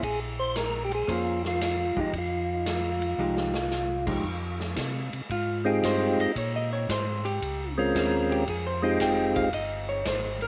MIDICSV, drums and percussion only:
0, 0, Header, 1, 2, 480
1, 0, Start_track
1, 0, Key_signature, -4, "minor"
1, 0, Tempo, 528634
1, 16, Time_signature, 4, 2, 24, 8
1, 9512, End_track
2, 0, Start_track
2, 0, Title_t, "Drums"
2, 26, Note_on_c, 9, 36, 32
2, 29, Note_on_c, 9, 51, 65
2, 116, Note_off_c, 9, 36, 0
2, 120, Note_off_c, 9, 51, 0
2, 505, Note_on_c, 9, 44, 58
2, 505, Note_on_c, 9, 51, 67
2, 506, Note_on_c, 9, 38, 62
2, 596, Note_off_c, 9, 44, 0
2, 596, Note_off_c, 9, 51, 0
2, 597, Note_off_c, 9, 38, 0
2, 831, Note_on_c, 9, 51, 42
2, 922, Note_off_c, 9, 51, 0
2, 984, Note_on_c, 9, 36, 30
2, 987, Note_on_c, 9, 51, 55
2, 1075, Note_off_c, 9, 36, 0
2, 1078, Note_off_c, 9, 51, 0
2, 1313, Note_on_c, 9, 38, 47
2, 1403, Note_off_c, 9, 38, 0
2, 1464, Note_on_c, 9, 44, 73
2, 1464, Note_on_c, 9, 51, 68
2, 1465, Note_on_c, 9, 38, 64
2, 1555, Note_off_c, 9, 44, 0
2, 1555, Note_off_c, 9, 51, 0
2, 1556, Note_off_c, 9, 38, 0
2, 1787, Note_on_c, 9, 36, 47
2, 1878, Note_off_c, 9, 36, 0
2, 1937, Note_on_c, 9, 51, 57
2, 1938, Note_on_c, 9, 36, 31
2, 2028, Note_off_c, 9, 36, 0
2, 2028, Note_off_c, 9, 51, 0
2, 2417, Note_on_c, 9, 38, 75
2, 2417, Note_on_c, 9, 44, 64
2, 2417, Note_on_c, 9, 51, 73
2, 2507, Note_off_c, 9, 44, 0
2, 2507, Note_off_c, 9, 51, 0
2, 2508, Note_off_c, 9, 38, 0
2, 2740, Note_on_c, 9, 51, 43
2, 2831, Note_off_c, 9, 51, 0
2, 3055, Note_on_c, 9, 38, 55
2, 3146, Note_off_c, 9, 38, 0
2, 3213, Note_on_c, 9, 38, 79
2, 3303, Note_off_c, 9, 38, 0
2, 3371, Note_on_c, 9, 38, 59
2, 3371, Note_on_c, 9, 44, 53
2, 3461, Note_off_c, 9, 44, 0
2, 3462, Note_off_c, 9, 38, 0
2, 3693, Note_on_c, 9, 49, 67
2, 3695, Note_on_c, 9, 36, 61
2, 3784, Note_off_c, 9, 49, 0
2, 3786, Note_off_c, 9, 36, 0
2, 3846, Note_on_c, 9, 36, 21
2, 3937, Note_off_c, 9, 36, 0
2, 4176, Note_on_c, 9, 38, 50
2, 4267, Note_off_c, 9, 38, 0
2, 4326, Note_on_c, 9, 36, 28
2, 4326, Note_on_c, 9, 44, 66
2, 4326, Note_on_c, 9, 51, 67
2, 4327, Note_on_c, 9, 38, 69
2, 4417, Note_off_c, 9, 36, 0
2, 4417, Note_off_c, 9, 44, 0
2, 4417, Note_off_c, 9, 51, 0
2, 4418, Note_off_c, 9, 38, 0
2, 4658, Note_on_c, 9, 51, 42
2, 4749, Note_off_c, 9, 51, 0
2, 4810, Note_on_c, 9, 36, 24
2, 4816, Note_on_c, 9, 51, 55
2, 4901, Note_off_c, 9, 36, 0
2, 4907, Note_off_c, 9, 51, 0
2, 5294, Note_on_c, 9, 36, 25
2, 5297, Note_on_c, 9, 44, 60
2, 5297, Note_on_c, 9, 51, 77
2, 5298, Note_on_c, 9, 38, 78
2, 5385, Note_off_c, 9, 36, 0
2, 5388, Note_off_c, 9, 44, 0
2, 5388, Note_off_c, 9, 51, 0
2, 5389, Note_off_c, 9, 38, 0
2, 5629, Note_on_c, 9, 51, 42
2, 5719, Note_off_c, 9, 51, 0
2, 5774, Note_on_c, 9, 36, 24
2, 5775, Note_on_c, 9, 51, 66
2, 5865, Note_off_c, 9, 36, 0
2, 5866, Note_off_c, 9, 51, 0
2, 6257, Note_on_c, 9, 36, 25
2, 6260, Note_on_c, 9, 44, 55
2, 6260, Note_on_c, 9, 51, 63
2, 6261, Note_on_c, 9, 38, 69
2, 6348, Note_off_c, 9, 36, 0
2, 6351, Note_off_c, 9, 44, 0
2, 6351, Note_off_c, 9, 51, 0
2, 6352, Note_off_c, 9, 38, 0
2, 6586, Note_on_c, 9, 51, 45
2, 6677, Note_off_c, 9, 51, 0
2, 6739, Note_on_c, 9, 36, 17
2, 6740, Note_on_c, 9, 51, 57
2, 6830, Note_off_c, 9, 36, 0
2, 6831, Note_off_c, 9, 51, 0
2, 7219, Note_on_c, 9, 36, 26
2, 7223, Note_on_c, 9, 44, 61
2, 7223, Note_on_c, 9, 51, 73
2, 7224, Note_on_c, 9, 38, 73
2, 7310, Note_off_c, 9, 36, 0
2, 7314, Note_off_c, 9, 44, 0
2, 7314, Note_off_c, 9, 51, 0
2, 7315, Note_off_c, 9, 38, 0
2, 7555, Note_on_c, 9, 51, 45
2, 7645, Note_off_c, 9, 51, 0
2, 7697, Note_on_c, 9, 51, 60
2, 7699, Note_on_c, 9, 36, 21
2, 7787, Note_off_c, 9, 51, 0
2, 7790, Note_off_c, 9, 36, 0
2, 8171, Note_on_c, 9, 44, 60
2, 8171, Note_on_c, 9, 51, 73
2, 8172, Note_on_c, 9, 38, 69
2, 8176, Note_on_c, 9, 36, 21
2, 8262, Note_off_c, 9, 44, 0
2, 8262, Note_off_c, 9, 51, 0
2, 8263, Note_off_c, 9, 38, 0
2, 8267, Note_off_c, 9, 36, 0
2, 8498, Note_on_c, 9, 51, 44
2, 8502, Note_on_c, 9, 36, 53
2, 8589, Note_off_c, 9, 51, 0
2, 8593, Note_off_c, 9, 36, 0
2, 8651, Note_on_c, 9, 51, 63
2, 8654, Note_on_c, 9, 36, 19
2, 8742, Note_off_c, 9, 51, 0
2, 8744, Note_off_c, 9, 36, 0
2, 9128, Note_on_c, 9, 44, 70
2, 9128, Note_on_c, 9, 51, 74
2, 9129, Note_on_c, 9, 38, 74
2, 9133, Note_on_c, 9, 36, 25
2, 9219, Note_off_c, 9, 44, 0
2, 9219, Note_off_c, 9, 51, 0
2, 9220, Note_off_c, 9, 38, 0
2, 9224, Note_off_c, 9, 36, 0
2, 9450, Note_on_c, 9, 51, 44
2, 9512, Note_off_c, 9, 51, 0
2, 9512, End_track
0, 0, End_of_file